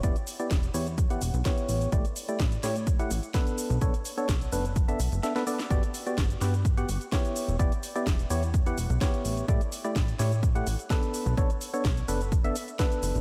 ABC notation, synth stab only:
X:1
M:4/4
L:1/16
Q:1/4=127
K:Edor
V:1 name="Synth stab"
[B,EGd] z2 [B,EGd] z2 [B,EGc] z2 [B,EGf] z2 [B,EGc]4 | [A,EGd] z2 [A,EGd] z2 [A,EGc] z2 [A,EGf] z2 [B,DAB]4 | [B,DAc] z2 [B,DAc] z2 [B,DAB] z2 [B,DAe] z2 [B,DAe] [B,DAB] [B,DAd] z | [B,FGd] z2 [B,FGd] z2 [B,FGB] z2 [B,FGf] z2 [B,EGc]4 |
[B,EGd] z2 [B,EGd] z2 [B,EGc] z2 [B,EGf] z2 [B,EGc]4 | [A,EGd] z2 [A,EGd] z2 [A,EGc] z2 [A,EGf] z2 [B,DAB]4 | [B,DAc] z2 [B,DAc] z2 [B,DAB] z2 [B,DAe] z2 [B,DAB]4 |]